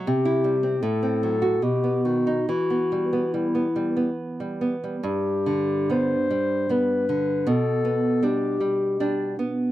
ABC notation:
X:1
M:3/4
L:1/16
Q:1/4=76
K:Em
V:1 name="Clarinet"
G4 A4 G2 F2 | F4 E4 z4 | [K:G] G4 c4 B4 | A4 G6 z2 |]
V:2 name="Nylon-string guitar" clef=bass
C, E G, C A,, C F, F B,, B, ^D, ^D | E, B, G, B, G, B, G, B,2 G, B, G, | [K:G] G,,2 D,2 [G,B,]2 G,2 [G,B,]2 D,2 | B,,2 B,2 [G,D]2 G,2 [G,D]2 B,2 |]